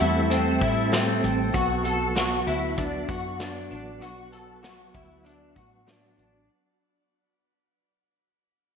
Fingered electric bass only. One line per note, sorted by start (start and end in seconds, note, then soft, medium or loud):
0.01 0.59 E2 medium
0.62 1.20 A2 medium
1.24 1.53 A1 medium
1.54 2.43 B1 medium
2.47 3.06 D2 medium
3.09 3.68 F#2 medium
3.71 4.02 A1 medium
4.02 4.90 B1 medium
4.95 5.53 D2 medium
5.56 6.15 A2 medium
6.18 6.48 A1 medium